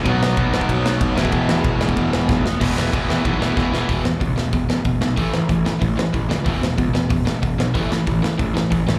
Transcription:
<<
  \new Staff \with { instrumentName = "Distorted electric guitar" } { \time 4/4 \key e \major \tempo 4 = 187 <b, fis b dis'>2.~ <b, fis b dis'>8 <e gis b e'>8~ | <e gis b e'>2.~ <e gis b e'>8 r8 | <e gis b e'>8 <e gis b e'>8 <e gis b e'>8 <e gis b e'>8 <e gis b e'>8 <e gis b e'>8 <e gis b e'>8 <e gis b e'>8 | r1 |
r1 | r1 | r1 | }
  \new Staff \with { instrumentName = "Distorted electric guitar" } { \clef bass \time 4/4 \key e \major <b, fis b>2.~ <b, fis b>8 <e, b, e>8~ | <e, b, e>2.~ <e, b, e>8 r8 | <e, b, e>8 <e, b, e>8 <e, b, e>8 <e, b, e>8 <e, b, e>8 <e, b, e>8 <e, b, e>8 <e, b, e>8 | <e, b, e>8 <e, b,>8 <e, b,>8 <e, b,>8 <e, b,>8 <e, b,>8 <e, b,>8 <e, b,>8 |
<a, e a>8 <a, e>8 <a, e>8 <a, e>8 <a, e>8 <a, e>8 <a, e>8 <a, e>8 | <e, b, e>8 <e, b,>8 <e, b,>8 <e, b,>8 <e, b,>8 <e, b,>8 <e, b,>8 <e, b,>8 | <a, e a>8 <a, e>8 <a, e>8 <a, e>8 <a, e>8 <a, e>8 <a, e>8 <a, e>8 | }
  \new Staff \with { instrumentName = "Overdriven electric guitar" } { \clef bass \time 4/4 \key e \major <b, fis b>2.~ <b, fis b>8 <e, b, e>8~ | <e, b, e>2.~ <e, b, e>8 r8 | <e, b, e>8 <e, b, e>8 <e, b, e>8 <e, b, e>8 <e, b, e>8 <e, b, e>8 <e, b, e>8 <e, b, e>8 | <e, b, e>8 <e, b,>8 <e, b,>8 <e, b,>8 <e, b,>8 <e, b,>8 <e, b,>8 <e, b,>8 |
<a, e a>8 <a, e>8 <a, e>8 <a, e>8 <a, e>8 <a, e>8 <a, e>8 <a, e>8 | <e, b, e>8 <e, b,>8 <e, b,>8 <e, b,>8 <e, b,>8 <e, b,>8 <e, b,>8 <e, b,>8 | <a, e a>8 <a, e>8 <a, e>8 <a, e>8 <a, e>8 <a, e>8 <a, e>8 <a, e>8 | }
  \new Staff \with { instrumentName = "Picked electric bass" } { \clef bass \time 4/4 \key e \major b,,4 b,,8 b,,8 b,,4 b,,8 e,,8 | e,,8 e,,8 e,,4 e,,8 e,,8 b,,8 e,,8 | e,,8 e,,8 e,,8 e,,8 b,,8 e,,8 e,,8 e,,8 | e,,8 e,,8 cis,8 e,,8 e,,8 e,,8 e,,8 b,,8 |
a,,8 a,,8 a,,4 a,,4 a,,8 cis,8 | e,,8 e,,8 cis,8 e,,8 e,,8 e,,8 e,,8 b,,8 | a,,8 a,,8 a,,4 a,,4 a,,8 cis,8 | }
  \new DrumStaff \with { instrumentName = "Drums" } \drummode { \time 4/4 <bd cymr>8 sn8 <bd cymr>8 sn16 bd16 <bd cymr>8 sn8 <bd cymr>8 sn16 bd16 | <bd cymr>8 sn8 <bd cymr>8 sn16 bd16 <bd cymr>8 sn8 <bd sn>8 sn8 | <cymc bd>8 sn8 <bd cymr>8 sn8 <bd cymr>8 sn8 <bd sn>8 sn8 | <hho bd>8 sn8 <hho bd>8 sn8 <hho bd>8 sn8 <hho bd>8 sn8 |
<hho bd>8 sn8 <hho bd>8 sn8 <hho bd>8 sn8 <hho bd>8 sn8 | <hho bd>8 sn8 <hho bd>8 sn8 <hho bd>8 sn8 <hho bd>8 sn8 | <hho bd>8 sn8 <hho bd>8 sn8 <hho bd>8 sn8 <hho bd>8 sn8 | }
>>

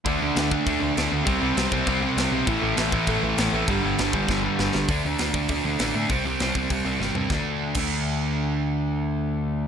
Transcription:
<<
  \new Staff \with { instrumentName = "Overdriven electric guitar" } { \clef bass \time 4/4 \key c \lydian \tempo 4 = 199 <d a d'>8 <d a d'>8 <d a d'>8 <d a d'>8 <d a d'>8 <d a d'>8 <d a d'>8 <d a d'>8 | <c g c'>8 <c g c'>8 <c g c'>8 <c g c'>8 <c g c'>8 <c g c'>8 <c g c'>8 <c g c'>8 | <a, e a>8 <a, e a>8 <a, e a>8 <a, e a>8 <a, e a>8 <a, e a>8 <a, e a>8 <a, e a>8 | <g, d g>8 <g, d g>8 <g, d g>8 <g, d g>8 <g, d g>8 <g, d g>8 <g, d g>8 <g, d g>8 |
<d a d'>8 <d a d'>8 <d a d'>8 <d a d'>8 <d a d'>8 <d a d'>8 <d a d'>8 <d a d'>8 | <c g c'>8 <c g c'>8 <c g c'>8 <c g c'>8 <c g c'>8 <c g c'>8 <c g c'>8 <c g c'>8 | <d a d'>8 r4 <d a d'>2~ <d a d'>8~ | <d a d'>1 | }
  \new Staff \with { instrumentName = "Overdriven electric guitar" } { \clef bass \time 4/4 \key c \lydian <d a d'>1 | <c g c'>1 | <a, e a>1 | <g, d g>1 |
r1 | r1 | r1 | r1 | }
  \new Staff \with { instrumentName = "Picked electric bass" } { \clef bass \time 4/4 \key c \lydian d,8 d,8 d,4 d,8 d,8 d,8 d,8 | c,8 c,8 c,8 c,8 c,4 c,8 b,,8 | a,,8 a,,8 a,,4 a,,8 a,,8 a,,8 a,,8 | g,,8 g,,8 g,,8 g,,8 g,,4 g,,8 g,,8 |
d,8 d,8 d,8 d,8 d,8 d,8 a,,8 a,8 | c,8 c,8 c,8 c,8 c,8 c,8 g,,8 g,8 | d,8 r4 d,2~ d,8~ | d,1 | }
  \new DrumStaff \with { instrumentName = "Drums" } \drummode { \time 4/4 <cymc bd>4 <cymc sn>8 bd8 <cymc bd>4 <cymc sn>4 | <cymc bd>4 <cymc sn>8 bd8 <cymc bd>4 <cymc sn>4 | <cymc bd>4 <cymc sn>8 bd8 <cymc bd>4 <cymc sn>4 | <cymc bd>4 <cymc sn>8 bd8 <bd sn>4 sn8 sn8 |
<hho bd>4 <hho sn>8 bd8 <hho bd>4 <hho sn>4 | <hho bd>4 <hho sn>8 bd8 <hho bd>4 sn8 tomfh8 | <bd sn>4 r8 <cymc bd>8 r4 r4 | r4 r4 r4 r4 | }
>>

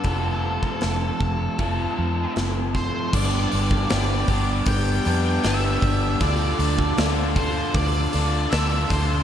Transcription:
<<
  \new Staff \with { instrumentName = "Lead electric guitar" } { \time 4/4 \key g \mixolydian \tempo 4 = 78 a'2. r8 c''8 | d''2 g''4 e''4 | d''4 r8 c''8 d''4 e''8 c''8 | }
  \new Staff \with { instrumentName = "Overdriven electric guitar" } { \time 4/4 \key g \mixolydian <f a c' f' a'>2 <f a c' f' a'>2 | <g, d g b d' g'>8 <g b d' g'>8 <g b d' g'>8 <g b d' g'>4 <g b d' g'>8 <g b d' g'>4 | <d d' f' a'>8 <d' f' a'>8 <d d' f' a'>8 <d' f' a'>4 <d' f' a'>8 <d d' f' a'>4 | }
  \new Staff \with { instrumentName = "Fingered electric bass" } { \clef bass \time 4/4 \key g \mixolydian f,,4 f,,8 f,,8 f,,8 f,8 fis,,4 | g,,8 g,,8 g,,8 g,,8 g,,8 f,8 g,,8 g,,8 | d,8 d,8 d,4 d,8 d,8 d,8 d,8 | }
  \new DrumStaff \with { instrumentName = "Drums" } \drummode { \time 4/4 <hho bd>8. bd16 <hho sn>8 bd8 <hho bd>4 <hho sn>8 <bd sn>8 | <cymc bd>8 hho16 bd16 <hho sn>8 <hho bd>8 <hho bd>8 hho8 <hho sn>8 <hho bd>8 | <hho bd>8 hho16 bd16 <hho sn>8 <hho bd>8 <hho bd>8 hho8 <hho sn>8 <hho bd sn>8 | }
>>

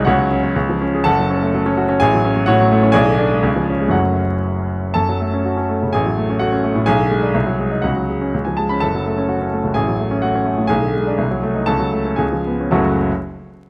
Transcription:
<<
  \new Staff \with { instrumentName = "Grand piano" } { \time 2/4 \key fis \minor \tempo 4 = 123 <fis' cis'' fis''>4 r4 | <a' fis'' a''>2 | <gis' gis''>4 <fis' cis'' fis''>4 | <gis' d'' gis''>2 |
<fis' cis'' fis''>4. r8 | <a' a''>2 | <gis' gis''>4 <fis' fis''>4 | <gis' gis''>2 |
<fis' fis''>4 r16 gis''16 a''16 b''16 | <a' a''>2 | <gis' gis''>4 <fis' fis''>4 | <gis' gis''>2 |
<a' a''>4 <gis' gis''>4 | <fis,, cis, fis a cis' fis' a''>8 r4. | }
  \new Staff \with { instrumentName = "Grand piano" } { \clef bass \time 2/4 \key fis \minor cis,16 fis16 cis'16 fis16 cis,16 eis16 cis'16 gis'16 | fis,,16 fis16 cis'16 a16 fis16 cis'16 fis'16 cis'16 | a,,16 fis16 cis'16 fis16 a,16 fis16 a16 cis'16 | b,,16 d16 d'16 gis16 cis,16 eis16 cis'16 gis16 |
<fis,, fis, fis a cis'>2 | fis,16 fis16 a16 cis'16 fis'16 cis'16 a16 cis16 | a,,16 fis16 a16 cis'16 a16 cis'16 a16 a,16 | b,,16 d16 gis16 d'16 bis,,16 fis16 gis16 dis'16 |
cis,16 fis16 gis16 cis'16 cis,16 eis16 gis16 cis'16 | fis,,16 fis16 a16 cis'16 fis'16 cis'16 a16 cis,16 | a,,16 fis16 a16 cis'16 a16 cis'16 a16 a,16 | b,,16 d16 gis16 d'16 c,16 ges16 a16 ees'16 |
cis,16 fis16 a16 cis'16 cis,16 eis16 b16 cis'16 | r2 | }
>>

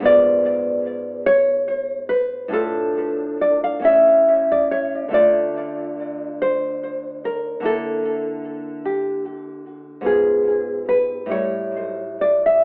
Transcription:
\new Staff \with { instrumentName = "Nylon-string guitar" } { \time 6/8 \key d \minor \tempo 4. = 48 << { d''4. cis''4 b'8 | a'4 d''16 f''16 e''8. d''16 cis''8 | d''4. c''4 bes'8 | a'4. g'8 r4 |
gis'4 b'8 cis''4 d''16 e''16 | } \\ { <gis, b eis'>2. | <a, d' f'>4. <a, cis' e'>4. | <d a f'>2. | <d bes e'>2. |
<gis, b eis'>4. <a, g e'>4. | } >> }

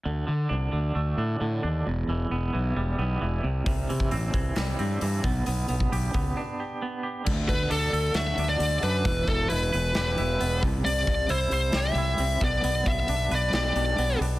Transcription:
<<
  \new Staff \with { instrumentName = "Lead electric guitar" } { \time 4/4 \key d \mixolydian \tempo 4 = 134 r1 | r1 | r1 | r1 |
r8 b'8 a'4 e''8. d''8. b'8~ | b'8 a'8 b'4 b'4. r8 | d''4 c''8 c''8 e''4. d''8~ | d''8 e''4 d''8 d''4. r8 | }
  \new Staff \with { instrumentName = "Clean electric guitar" } { \time 4/4 \key d \mixolydian d8 d8 d'8 d8 a8 d'8 d8 d'8 | e,8 e8 b8 e8 g8 b8 e8 c8 | c8 e8 c'8 e8 g8 c'8 e8 b8 | b8 b8 g'8 b8 d'8 g'8 b8 g'8 |
d4 d'8 a'8 fis'8 d'8 d8 d'8 | e4 e'8 b'8 g'8 e'8 b8 c8 | c4 e'8 c''8 g'8 e'8 c'8 b8 | b4 d'8 b'8 g'8 d'8 b8 d'8 | }
  \new Staff \with { instrumentName = "Fingered electric bass" } { \clef bass \time 4/4 \key d \mixolydian d,8 d8 c,8 d,8 d,8 a,8 a,8 dis,8 | e,,8 e,,8 e,,8 b,,8 e,,8 b,,8 e,,8 c,8 | c,8 c8 a,,8 c,8 c,8 g,8 g,8 b,,8 | b,,8 b,,8 b,,8 cis,8 r2 |
d,8 d,8 d,8 d,8 d,8 d,8 d,8 fis,8 | e,,8 e,,8 e,,8 e,,8 e,,8 e,,8 e,,8 c,8 | c,8 c,8 c,8 c,8 c,8 c,8 c,8 b,,8 | b,,8 b,,8 b,,8 b,,8 b,,8 b,,8 b,,8 b,,8 | }
  \new DrumStaff \with { instrumentName = "Drums" } \drummode { \time 4/4 r4 r4 r4 r4 | r4 r4 r4 r4 | <hho bd>8 hho16 bd16 hho8 <hho bd>8 <hho sn>8 hho8 hho8 <hho bd>8 | hho8 hho16 bd16 hho8 <hho bd>8 r4 r4 |
<cymc bd>8 <hho bd>8 hho8 hho8 <hho sn>8 hho8 hho8 hho8 | <hho bd>8 <hho bd>8 hho8 hho8 <hho sn>8 hho8 hho8 <hho bd>8 | hho8 <hho bd>8 hho8 hho8 <hho sn>8 hho8 hho8 <hho bd>8 | hho8 <hho bd>8 hho8 hho8 <hho sn>8 hho8 hho8 hho8 | }
>>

